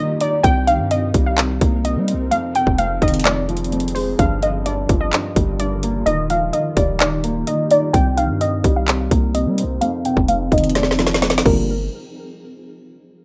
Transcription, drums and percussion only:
0.21 closed hi-hat
0.44 kick, closed hi-hat
0.68 closed hi-hat
0.91 closed hi-hat
1.14 kick, closed hi-hat
1.38 clap, closed hi-hat
1.61 kick, closed hi-hat
1.85 closed hi-hat
2.08 closed hi-hat
2.32 closed hi-hat
2.55 closed hi-hat
2.67 kick
2.78 closed hi-hat
3.02 kick, closed hi-hat
3.08 closed hi-hat
3.14 closed hi-hat
3.20 closed hi-hat
3.25 clap, closed hi-hat
3.49 closed hi-hat
3.57 closed hi-hat
3.64 closed hi-hat
3.72 closed hi-hat
3.80 closed hi-hat
3.88 closed hi-hat
3.96 open hi-hat
4.19 kick, closed hi-hat
4.42 closed hi-hat
4.66 closed hi-hat
4.89 kick, closed hi-hat
5.13 clap, closed hi-hat
5.36 kick, closed hi-hat
5.60 closed hi-hat
5.83 closed hi-hat
6.07 closed hi-hat
6.30 closed hi-hat
6.53 closed hi-hat
6.77 kick, closed hi-hat
7.00 clap, closed hi-hat
7.24 closed hi-hat
7.47 closed hi-hat
7.71 closed hi-hat
7.94 kick, closed hi-hat
8.18 closed hi-hat
8.41 closed hi-hat
8.64 kick, closed hi-hat
8.88 clap, closed hi-hat
9.11 kick, closed hi-hat
9.35 closed hi-hat
9.58 closed hi-hat
9.82 closed hi-hat
10.05 closed hi-hat
10.17 kick
10.28 closed hi-hat
10.52 kick, closed hi-hat
10.58 closed hi-hat
10.64 closed hi-hat
10.69 closed hi-hat
10.75 snare, closed hi-hat
10.83 snare
10.91 snare
10.99 snare, closed hi-hat
11.07 snare, closed hi-hat
11.14 snare, closed hi-hat
11.22 snare, closed hi-hat
11.30 snare, closed hi-hat
11.38 snare, closed hi-hat
11.46 kick, crash

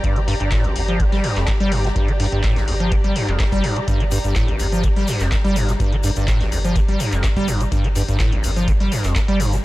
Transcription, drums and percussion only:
0.04 kick, closed hi-hat, ride
0.16 closed hi-hat
0.28 open hi-hat, ride
0.40 closed hi-hat
0.51 kick, snare, clap, closed hi-hat, ride
0.64 closed hi-hat
0.76 open hi-hat, ride
0.88 closed hi-hat
1.00 kick, closed hi-hat, ride
1.12 snare, closed hi-hat
1.24 open hi-hat, ride
1.36 snare, clap, closed hi-hat
1.47 kick, snare, clap, closed hi-hat, ride
1.60 closed hi-hat
1.72 open hi-hat, ride
1.84 snare, closed hi-hat
1.96 kick, closed hi-hat, ride
2.08 closed hi-hat
2.20 open hi-hat, ride
2.32 closed hi-hat, ride
2.43 kick, snare, clap, closed hi-hat, ride
2.56 snare, closed hi-hat
2.68 open hi-hat, ride
2.80 closed hi-hat
2.92 kick, closed hi-hat, ride
3.04 closed hi-hat
3.16 open hi-hat, ride
3.28 clap, closed hi-hat
3.39 kick, snare, clap, closed hi-hat, ride
3.52 kick, closed hi-hat
3.64 open hi-hat, ride
3.76 closed hi-hat, ride
3.88 kick, closed hi-hat, ride, shaker
4.00 closed hi-hat
4.11 open hi-hat, ride, shaker
4.24 closed hi-hat, shaker
4.36 kick, snare, clap, closed hi-hat, ride, shaker
4.48 closed hi-hat
4.59 open hi-hat, ride, shaker
4.72 closed hi-hat, shaker
4.83 kick, closed hi-hat, ride, shaker
4.96 snare, closed hi-hat
5.08 open hi-hat, ride, shaker
5.20 snare, clap, shaker
5.32 kick, snare, clap, closed hi-hat, ride, shaker
5.45 closed hi-hat
5.56 open hi-hat, ride, shaker
5.68 snare, closed hi-hat, shaker
5.80 kick, closed hi-hat, ride, shaker
5.92 closed hi-hat
6.03 open hi-hat, ride, shaker
6.16 closed hi-hat, ride, shaker
6.27 kick, snare, clap, closed hi-hat, ride, shaker
6.40 snare, closed hi-hat
6.52 open hi-hat, ride, shaker
6.65 closed hi-hat, shaker
6.75 kick, closed hi-hat, ride, shaker
6.88 closed hi-hat
7.00 open hi-hat, ride, shaker
7.12 clap, closed hi-hat, shaker
7.23 kick, snare, clap, closed hi-hat, ride, shaker
7.36 kick, closed hi-hat
7.48 open hi-hat, ride, shaker
7.60 closed hi-hat, ride, shaker
7.72 kick, closed hi-hat, ride, shaker
7.84 closed hi-hat
7.95 open hi-hat, ride, shaker
8.08 closed hi-hat, shaker
8.19 kick, snare, clap, closed hi-hat, ride, shaker
8.32 closed hi-hat
8.44 open hi-hat, ride, shaker
8.56 closed hi-hat, shaker
8.68 kick, closed hi-hat, ride, shaker
8.80 snare, closed hi-hat
8.92 open hi-hat, ride, shaker
9.04 snare, clap, closed hi-hat, shaker
9.15 kick, snare, clap, closed hi-hat, ride, shaker
9.28 closed hi-hat
9.40 open hi-hat, ride, shaker
9.52 snare, closed hi-hat, shaker

